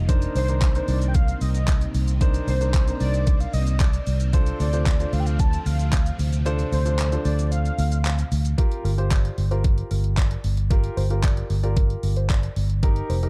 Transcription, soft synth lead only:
0.36 C5
0.89 D5
1.08 G5
1.15 F5
1.42 D#5
2.48 C5
3.00 D5
3.40 F5
3.54 D#5
3.80 D5
4.61 D5
5.13 F5
5.20 G5
5.26 F5
5.40 A5
5.66 F5
6.72 C5
7.25 D5
7.52 F5

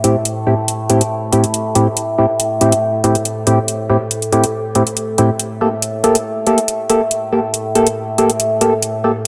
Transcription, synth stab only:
0.04 A2 C4 E4 G4
0.47 A2 C4 E4 G4
0.90 A2 C4 E4 G4
1.32 A2 C4 E4 G4
1.75 A2 C4 E4 G4
2.18 A2 C4 E4 G4
2.61 A2 C4 E4 G4
3.04 A2 C4 E4 G4
3.47 A2 C4 E4 G4
3.90 A2 C4 E4 G4
4.33 A2 C4 E4 G4
4.75 A2 C4 E4 G4
5.18 A2 C4 E4 G4
5.61 A#3 G4 A4
6.04 A#3 G4 A4
6.47 A#3 G4 A4
6.90 A#3 G4 A4
7.32 A#3 G4 A4
7.75 A#3 G4 A4
8.18 A#3 G4 A4
8.61 A#3 G4 A4
9.04 A#3 G4 A4

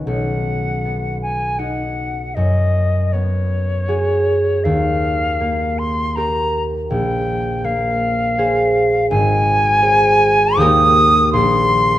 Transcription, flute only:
0.06 F#5
1.22 G#5
1.59 F#5
2.35 D#5
3.13 C#5
4.64 F5
5.79 C6
6.16 A#5
6.90 G5
7.65 F5
9.10 G#5
10.58 D#6
11.33 C6

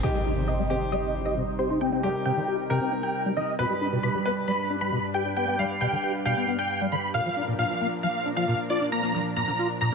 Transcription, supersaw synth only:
0.03 D#5
0.48 D#5
0.92 D#5
1.26 D#5
1.59 C5
1.81 G5
2.26 G5
2.70 G5
3.03 G5
3.37 D#5
3.59 B5
4.03 B5
4.48 B5
4.81 B5
5.14 G5
5.37 G5
5.81 G5
6.26 G5
6.59 G5
6.92 B5
7.15 F5
7.59 F5
8.03 F5
8.37 F5
8.70 D5
8.92 A#5
9.36 A#5
9.81 A#5

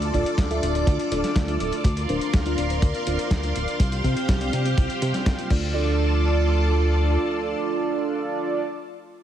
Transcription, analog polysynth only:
Already playing: D4 F4 A4 E5
0.14 D4 F4 A4 D5
0.51 D4 F4 A4 E5
0.75 D4 F4 A4 D5
1.12 D4 F4 A4 D5
1.48 D4 F4 A4 E5
2.09 D4 F4 A#4 C5
2.46 D4 F4 A#4 D5
2.70 D4 A#4 C5
3.07 D4 F4 A#4 C5
3.43 D4 F4 A#4 D5
4.04 C4 F4 G4 C5
4.41 C4 F4 G4 D5
4.65 C4 F4 G4 C5
5.14 C4 F4 G4 D5
5.38 C4 F4 G4 A#4
5.51 D4 F4 A4 D5

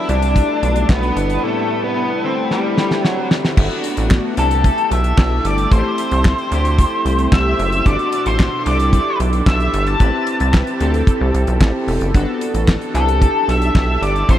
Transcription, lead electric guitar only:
0.10 D4
0.90 B3
1.44 A3
1.84 B3
2.24 C4
2.52 G3
3.04 F#3
4.39 A4
4.93 E5
5.46 D5
5.73 C5
7.33 E5
7.86 D5
8.27 C5
8.67 D5
9.47 E5
9.87 A5
12.96 A4
13.49 E5
14.03 D5
14.30 C5

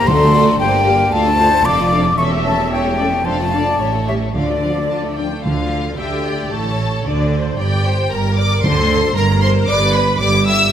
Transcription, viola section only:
0.07 A4
0.60 C5
0.86 A#4
1.13 A4
1.39 C5
1.66 D5
2.18 E5
2.72 C#5
2.99 D5
3.25 C5
3.53 D5
3.79 C#5
4.07 C#5
4.36 D5
5.99 E5
6.26 D5
6.53 C#5
7.06 D5
7.33 C5
7.59 D5
7.85 C5
8.12 A#4
8.64 A4
8.91 A4
9.17 A#4
9.69 B4
10.21 G4

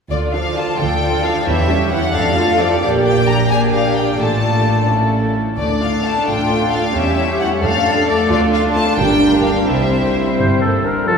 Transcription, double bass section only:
0.10 D2
0.79 D2
1.47 E2
2.15 F2
2.82 A#1
4.19 A1
5.59 D2
6.27 A1
6.94 E2
7.63 F2
8.30 D2
8.99 G1
9.68 C2
10.39 G1

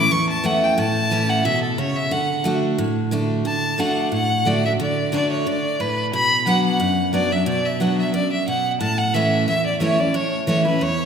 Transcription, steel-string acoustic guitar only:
Already playing: C#4 E4
0.11 E2
0.44 E3 A3 C#4 E4
0.78 A2
1.11 E3 A3 C#4 E4
1.45 B2
1.78 C#3
2.11 D3
2.44 D3 A3 D4 F#4
2.78 A2
3.11 D3 A3 D4 F#4
3.45 D3
3.78 D3 A3 D4 F#4
4.12 A2
4.45 D3 A3 D4 F#4
4.63 D4 F#4
4.80 D3
5.12 D3 A3 D4 F#4
5.47 D3
5.80 A2
6.13 B2
6.46 F#3 B3 D4 F#4
6.80 F#2
7.13 F#3 B3 D4 F#4
7.30 D4 F#4
7.46 B2
7.80 F#3 B3 D4 F#4
8.14 F#2
8.48 B2
8.81 A2
9.14 E3 A3 C#4 E4
9.48 E2
9.80 E3 A3 C#4 E4
9.98 C#4 E4
10.14 A2
10.47 E3 A3 C#4 E4
10.65 C#4 E4
10.81 E2

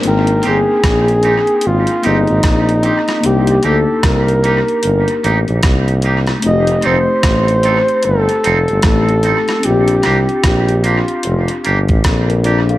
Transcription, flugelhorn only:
0.08 A#4
0.48 G#4
1.67 F4
2.06 D#4
3.26 G4
3.50 G4
3.65 A4
4.06 A#4
6.47 D#5
6.86 C5
8.05 A4
8.85 A4
9.65 G4
10.46 G4
10.86 F4

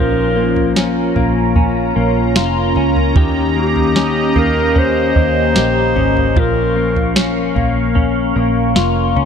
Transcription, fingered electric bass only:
Already playing: A#1
1.16 A#1
1.96 A#1
2.36 F1
2.76 C#2
3.16 D#2
4.36 D#2
5.16 D#2
5.56 A#1
5.96 G#1
6.36 A#1
7.56 A#1
8.36 A#1
8.76 F1
9.17 C#2

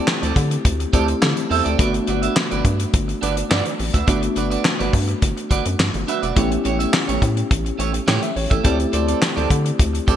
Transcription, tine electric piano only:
Already playing: A3 C4 E4 G4
0.93 A3 C4 E4 G4
1.78 A3 B3 D4 F#4
4.07 A3 B3 D4 F#4
6.36 B3 C#4 E4 G4
8.08 G5
8.23 E5
8.36 C#5
8.51 A4
8.64 A3 C4 E4 G4

